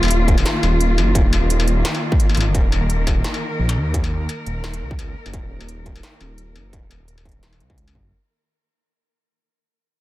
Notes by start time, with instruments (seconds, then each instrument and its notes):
Already playing: detuned saw bass D#1, cello section D#3 A#3 F4
0.03 struck metal
0.05 struck metal
0.08 closed hi-hat, struck metal
0.28 kick, closed hi-hat
0.38 struck metal
0.46 snare, closed hi-hat
0.63 detuned saw bass D#1, struck metal
0.81 closed hi-hat
0.98 detuned saw bass F#1, struck metal
1.15 detuned saw bass D#1, kick, closed hi-hat
1.33 struck metal
1.50 closed hi-hat
1.60 struck metal
1.68 closed hi-hat
1.85 snare, closed hi-hat
1.95 struck metal
2.12 kick
2.20 closed hi-hat
2.29 struck metal
2.35 detuned saw bass G#1, closed hi-hat, struck metal
2.41 struck metal
2.47 detuned saw bass F#1
2.55 detuned saw bass D#1, cello section A#4, kick, closed hi-hat
2.72 struck metal
2.90 closed hi-hat
3.07 kick, closed hi-hat, struck metal
3.24 snare, closed hi-hat
3.34 struck metal
3.59 detuned saw bass A#1
3.69 closed hi-hat, struck metal
3.77 detuned saw bass D#2
3.94 kick, closed hi-hat
4.04 struck metal
4.29 closed hi-hat, struck metal
4.46 detuned saw bass D#1, closed hi-hat
4.64 snare, struck metal
4.74 closed hi-hat
4.81 detuned saw bass C#2
4.91 kick
4.99 closed hi-hat, struck metal
5.26 detuned saw bass F#1, struck metal
5.34 detuned saw bass D#1, kick, closed hi-hat
5.61 struck metal
5.69 closed hi-hat
5.86 kick, closed hi-hat
5.96 struck metal
6.03 snare, closed hi-hat
6.21 detuned saw bass D#1, struck metal
6.38 closed hi-hat
6.56 detuned saw bass F#1, struck metal
6.73 detuned saw bass D#1, kick, closed hi-hat
6.91 closed hi-hat, struck metal
7.08 closed hi-hat
7.18 struck metal
7.25 kick, closed hi-hat
7.29 closed hi-hat
7.32 closed hi-hat
7.43 snare, closed hi-hat
7.53 struck metal
7.60 detuned saw bass C#2, closed hi-hat
7.70 kick
7.78 closed hi-hat
7.88 struck metal
7.95 detuned saw bass F#1, kick